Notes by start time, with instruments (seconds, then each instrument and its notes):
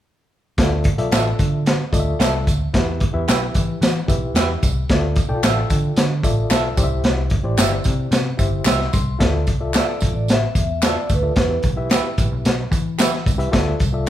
0.58 picked electric bass D2, reed electric piano F4 A4 D5 E5, kick, snare, closed hi-hat, tambourine
0.84 kick, closed hi-hat
0.98 picked electric bass B1, reed electric piano F4 A4 D5 E5, closed hi-hat
1.11 picked electric bass A1, clean electric guitar F4 A4 E5, snare, clap, closed hi-hat, tambourine
1.39 picked electric bass D3, kick, closed hi-hat, tambourine
1.66 snare, closed hi-hat, tambourine
1.92 picked electric bass D2, reed electric piano F4 A4 D5 D#5, kick, closed hi-hat, tambourine
2.00 reed electric piano E5
2.19 picked electric bass C2, clean electric guitar F4 A4 E5, snare, clap, closed hi-hat, tambourine
2.47 picked electric bass D2, kick, closed hi-hat, tambourine
2.74 picked electric bass E2, reed electric piano E4 G4 B4 E5, kick, snare, closed hi-hat
3.00 kick, closed hi-hat
3.13 picked electric bass E2, reed electric piano E4 G4 B4 E5
3.28 picked electric bass B1, clean electric guitar G4 B4 E5, snare, clap, closed hi-hat, tambourine
3.54 picked electric bass E3, kick, closed hi-hat, tambourine
3.81 picked electric bass E3, snare, closed hi-hat, tambourine
4.08 picked electric bass B1, reed electric piano E4 G4 B4 E5, kick, closed hi-hat, tambourine
4.35 picked electric bass E2, clean electric guitar G4 B4 E5, snare, clap, closed hi-hat, tambourine
4.63 picked electric bass C2, kick, closed hi-hat, tambourine
4.89 picked electric bass D2, reed electric piano F4 A4 D5 E5, kick, snare, closed hi-hat
5.16 kick, closed hi-hat, tambourine
5.28 picked electric bass B1, reed electric piano E4 A4 D5 G5
5.35 reed electric piano F4
5.43 picked electric bass A1, clean electric guitar F4 A4 E5, snare, clap, closed hi-hat, tambourine
5.70 picked electric bass D3, kick, closed hi-hat, tambourine
5.96 picked electric bass D3, snare, closed hi-hat, tambourine
6.23 picked electric bass A1, reed electric piano F4 A4 D5 E5, kick, closed hi-hat, tambourine
6.50 picked electric bass B1, clean electric guitar F4 A4 E5, snare, clap, closed hi-hat, tambourine
6.77 picked electric bass C2, reed electric piano E4 G4 C5 D5, kick, closed hi-hat, tambourine
6.84 reed electric piano E5
7.04 picked electric bass C2, snare, closed hi-hat, tambourine
7.30 kick, closed hi-hat
7.43 picked electric bass A1, reed electric piano E4 G4 C5 D5
7.57 picked electric bass G1, clean electric guitar G4 C5 E5, snare, clap, closed hi-hat, tambourine
7.84 picked electric bass C3, kick, closed hi-hat, tambourine
8.11 picked electric bass C3, snare, closed hi-hat, tambourine
8.37 picked electric bass G1, reed electric piano E4 G4 C5 E5, kick, closed hi-hat, tambourine
8.65 picked electric bass C2, clean electric guitar G4 C5 E5, reed electric piano E5, snare, clap, closed hi-hat, tambourine
8.81 snare
8.93 picked electric bass C2, reed electric piano C6, kick, closed hi-hat, tambourine
9.19 picked electric bass D2, reed electric piano F4 A4 D5 E5, kick, snare, closed hi-hat
9.47 picked electric bass C2, kick, closed hi-hat, tambourine
9.61 reed electric piano F4 A4 D5 E5
9.74 clean electric guitar F4 A4 E5, vibraphone D5, snare, clap, closed hi-hat, tambourine
10.00 picked electric bass B1, kick, closed hi-hat, tambourine
10.14 picked electric bass A1
10.28 vibraphone E5, snare, closed hi-hat, tambourine
10.55 picked electric bass E2, kick, closed hi-hat, tambourine
10.82 clean electric guitar F4 A4 E5, snare, clap, closed hi-hat, tambourine
10.87 vibraphone D5
11.09 picked electric bass D2, kick, closed hi-hat, tambourine
11.14 vibraphone B4
11.23 reed electric piano F4 A4 D5 E5
11.36 picked electric bass E2, reed electric piano E4 G4 B4 E5, kick, snare, closed hi-hat, tambourine
11.63 picked electric bass B1, kick, closed hi-hat, tambourine
11.77 reed electric piano E4 G4 B4 E5
11.90 clean electric guitar G4 B4 E5, snare, clap, closed hi-hat, tambourine
12.18 picked electric bass A1, kick, closed hi-hat, tambourine
12.32 picked electric bass B1
12.45 picked electric bass B1, snare, closed hi-hat, tambourine
12.71 picked electric bass E3, kick, closed hi-hat, tambourine
12.98 clean electric guitar G4 B4 E5, snare, clap, closed hi-hat, tambourine
13.14 snare
13.26 picked electric bass C2, kick, closed hi-hat, tambourine
13.38 reed electric piano E4 G4 B4 E5, closed hi-hat
13.51 picked electric bass D2, reed electric piano F4 A4 D5 E5, kick, snare, closed hi-hat, tambourine
13.80 picked electric bass C2, kick, closed hi-hat, tambourine
13.93 reed electric piano F4 A4 D5 E5